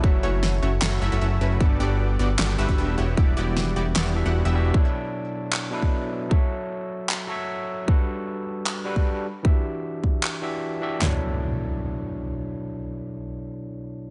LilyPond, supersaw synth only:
\new Staff \with { instrumentName = "Supersaw synth" } { \time 4/4 \key b \minor \tempo 4 = 153 <a cis' e' fis' cis''>8 <a cis' e' fis' cis''>4 <a cis' e' fis' cis''>16 r16 <a cis' e' fis' cis''>8 <a cis' e' fis' e''>16 <a cis' e' fis' e''>16 <a cis' e' fis' e''>8 <a cis' e' fis' b'>8 | <b d' fis' g' d''>8 <b d' fis' g' d''>4 <b d' fis' g' d''>16 r16 <b d' fis' g' d''>8 <b d' fis' g' e''>16 <b d' fis' g' e''>16 <b d' fis' g' e''>8 <b e' fis' g' cis''>8 | <b e' fis' g' d''>8 <b e' fis' g' d''>4 <b e' fis' g' d''>16 r16 <b e' fis' g' d''>8 r16 <b e' fis' g' fis''>8 <b e' fis' g' e''>8. | r1 |
r1 | r1 | r1 | r1 |
r1 | }